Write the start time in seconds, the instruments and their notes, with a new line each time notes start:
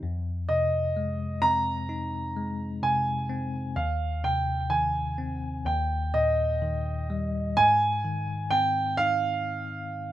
0.03 tine electric piano F2
0.49 tine electric piano C3, grand piano D#5
0.97 tine electric piano G#3
1.42 tine electric piano C4, grand piano A#5
1.89 tine electric piano D#4
2.36 tine electric piano G#3
2.83 tine electric piano C3, grand piano G#5
3.30 tine electric piano C4
3.76 tine electric piano D#2, grand piano F5
4.24 tine electric piano C3, grand piano G5
4.70 tine electric piano D#3, grand piano G#5
5.18 tine electric piano C4
5.65 tine electric piano D#2, grand piano G5
6.14 tine electric piano A#2, grand piano D#5
6.62 tine electric piano D#3
7.10 tine electric piano G3
7.57 tine electric piano G#2, grand piano G#5
8.05 tine electric piano D#3
8.51 tine electric piano C4, grand piano G5
8.97 tine electric piano D#4, grand piano F5